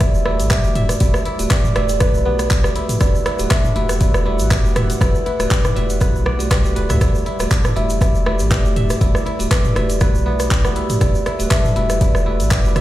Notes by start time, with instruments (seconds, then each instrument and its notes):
Already playing: sub bass E1, analog synth pad G3 E4 D5, kora D4
0.00 tine electric piano A3 F#4 G4 D5, kora E4, kalimba D5, kick, cross-stick, closed hi-hat, shaker
0.14 shaker
0.25 tine electric piano A3 F#4 G4 D5, kora E4, cross-stick
0.39 sub bass A1, closed hi-hat, shaker
0.50 kora G4, kalimba E5, kick, cross-stick, clap, closed hi-hat, shaker
0.64 sub bass E1, tine electric piano A3 F#4 G4 D5, shaker
0.75 kora E5, closed hi-hat, mid tom
0.89 cross-stick, closed hi-hat, shaker
1.00 sub bass E1, tine electric piano A3 F#4 G4 D5, kora E4, kalimba D5, kick, closed hi-hat, shaker
1.14 cross-stick, shaker
1.25 kora E4, closed hi-hat
1.39 sub bass D1, tine electric piano A3 F#4 G4 D5, closed hi-hat, shaker
1.50 kora G4, kick, cross-stick, clap, closed hi-hat, shaker
1.64 mid tom, shaker
1.76 sub bass E1, tine electric piano A3 F#4 G4 D5, kalimba D5, kora E5, cross-stick, closed hi-hat
1.89 closed hi-hat, shaker
2.00 tine electric piano A3 F#4 G4 D5, kalimba B4, kora B4, kick, cross-stick, closed hi-hat, shaker
2.14 sub bass B1, shaker
2.25 tine electric piano A3 F#4 G4 D5, kora B3, kalimba B4
2.39 cross-stick, closed hi-hat, shaker
2.50 kora G4, kick, clap, closed hi-hat, shaker
2.64 tine electric piano A3 F#4 G4 D5, cross-stick, shaker
2.76 kora E4, closed hi-hat
2.89 closed hi-hat, mid tom, shaker
3.00 sub bass E1, tine electric piano A3 F#4 G4 D5, kora E4, kalimba D5, analog synth pad F#5, kick, cross-stick, closed hi-hat, shaker
3.15 shaker
3.26 kora E4, cross-stick, closed hi-hat
3.39 sub bass D1, tine electric piano A3 F#4 G4 D5, closed hi-hat, shaker
3.51 kora D4, kalimba E5, kick, cross-stick, clap, closed hi-hat, shaker
3.64 mid tom, shaker
3.76 sub bass E1, tine electric piano A3 F#4 G4 D5, kora E4, closed hi-hat
3.89 cross-stick, closed hi-hat, shaker
4.00 tine electric piano A3 F#4 G4 D5, kora E4, kalimba D5, kick, closed hi-hat, shaker
4.14 cross-stick, shaker
4.26 tine electric piano A3 F#4 G4 D5, kora E4, kalimba D5
4.39 sub bass A1, closed hi-hat, shaker
4.51 kora G4, kick, cross-stick, clap, closed hi-hat, shaker
4.64 sub bass E1, tine electric piano A3 F#4 G4 D5, shaker
4.76 kora E5, cross-stick, closed hi-hat, mid tom
4.90 closed hi-hat, shaker
5.01 sub bass E1, tine electric piano A3 F#4 G4 D5, kora E4, kalimba B4, kick, cross-stick, closed hi-hat, shaker
5.15 shaker
5.26 kora E4, kalimba B4, closed hi-hat
5.39 sub bass D1, tine electric piano A3 F#4 G4 D5, cross-stick, closed hi-hat, shaker
5.51 kora G4, kick, clap, closed hi-hat, shaker
5.64 cross-stick, mid tom, shaker
5.76 sub bass E1, tine electric piano A3 F#4 G4 D5, kora E5, closed hi-hat
5.90 closed hi-hat, shaker
6.01 tine electric piano A3 F#4 G4 D5, kora B4, kick, cross-stick, closed hi-hat, shaker
6.14 sub bass B1, shaker
6.26 kora D5, cross-stick
6.39 tine electric piano A3 F#4 G4 D5, closed hi-hat, shaker
6.51 kora G4, kick, cross-stick, clap, closed hi-hat, shaker
6.64 tine electric piano A3 F#4 G4 D5, shaker
6.76 sub bass D1, tine electric piano A3 F#4 G4 D5, kora B4, closed hi-hat
6.89 sub bass E2, kora E5, cross-stick, closed hi-hat, mid tom, shaker
7.01 sub bass E1, tine electric piano A3 F#4 G4 D5, kora E4, analog synth pad D5, kalimba D5, kick, cross-stick, closed hi-hat, shaker
7.15 shaker
7.26 kora E4, closed hi-hat
7.39 sub bass D1, tine electric piano A3 F#4 G4 D5, kalimba D5, cross-stick, closed hi-hat, shaker
7.51 kora D4, kick, clap, closed hi-hat, shaker
7.64 cross-stick, mid tom, shaker
7.76 sub bass E1, tine electric piano A3 F#4 G4 D5, kora E4, kalimba E5, closed hi-hat
7.90 closed hi-hat, shaker
8.01 tine electric piano A3 F#4 G4 D5, kora E4, kick, cross-stick, closed hi-hat, shaker
8.15 shaker
8.26 tine electric piano A3 F#4 G4 D5, kora E4, cross-stick
8.39 sub bass A1, closed hi-hat, shaker
8.51 kora G4, kalimba D5, kick, cross-stick, clap, closed hi-hat, shaker
8.65 sub bass E1, tine electric piano A3 F#4 G4 D5, shaker
8.76 kora E5, closed hi-hat, mid tom
8.90 cross-stick, closed hi-hat, shaker
9.01 sub bass E1, tine electric piano A3 F#4 G4 D5, kora E4, kalimba D5, kick, closed hi-hat, shaker
9.15 cross-stick, shaker
9.26 kora E4, closed hi-hat
9.39 sub bass D1, tine electric piano A3 F#4 G4 D5, closed hi-hat, shaker
9.51 kora G4, kalimba B4, kick, cross-stick, clap, closed hi-hat, shaker
9.64 mid tom, shaker
9.76 sub bass E1, tine electric piano A3 F#4 G4 D5, kora E5, cross-stick, closed hi-hat
9.90 closed hi-hat, shaker
10.00 tine electric piano A3 F#4 G4 D5, kora B4, kick, cross-stick, closed hi-hat, shaker
10.14 sub bass B1, shaker
10.26 tine electric piano A3 F#4 G4 D5, kora B3
10.40 cross-stick, closed hi-hat, shaker
10.51 kora G4, kick, clap, closed hi-hat, shaker
10.64 tine electric piano A3 F#4 G4 D5, kora B3, cross-stick, shaker
10.76 kora E4, closed hi-hat
10.90 closed hi-hat, mid tom, shaker
11.01 sub bass E1, tine electric piano A3 F#4 G4 D5, kora E4, analog synth pad B4, kalimba D5, kick, cross-stick, closed hi-hat, shaker
11.15 shaker
11.26 kora E4, cross-stick, closed hi-hat
11.39 sub bass D1, tine electric piano A3 F#4 G4 D5, closed hi-hat, shaker
11.51 kora D4, kalimba E5, kick, cross-stick, clap, closed hi-hat, shaker
11.64 mid tom, shaker
11.76 sub bass E1, tine electric piano A3 F#4 G4 D5, kora E4, closed hi-hat
11.90 cross-stick, closed hi-hat, shaker
12.01 tine electric piano A3 F#4 G4 D5, kora E4, kalimba D5, kick, closed hi-hat, shaker
12.15 cross-stick, shaker
12.26 tine electric piano A3 F#4 G4 D5, kora E4, kalimba D5
12.40 sub bass A1, closed hi-hat, shaker
12.51 kora G4, kick, cross-stick, clap, closed hi-hat, shaker
12.64 sub bass E1, tine electric piano A3 F#4 G4 D5, shaker
12.76 kora E5, cross-stick, closed hi-hat, mid tom